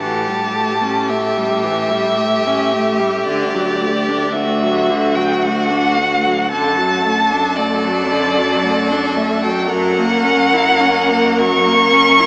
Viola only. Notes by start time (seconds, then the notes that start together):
0.01 E3
0.29 G3
0.55 A3
0.83 C#4
1.11 A3
1.37 G3
1.64 E3
1.91 G3
2.18 A3
2.46 C#4
2.72 A3
2.99 G3
3.26 D3
3.54 F#3
3.80 A3
4.09 D4
4.36 A3
4.63 F#3
4.90 D3
5.17 F#3
5.43 A3
5.71 D4
5.98 A3
6.26 F#3
6.50 D3
6.77 F#3
7.05 A3
7.32 D4
7.57 A3
7.84 F#3
8.11 D3
8.37 F#3
8.63 A3
8.90 D4
9.16 A3
9.44 F#3
9.70 F#3
9.98 A#3
10.24 C#4
10.53 E4
10.80 C#4
11.10 A#3
11.39 F#3
11.66 A#3
11.93 C#4
12.20 E4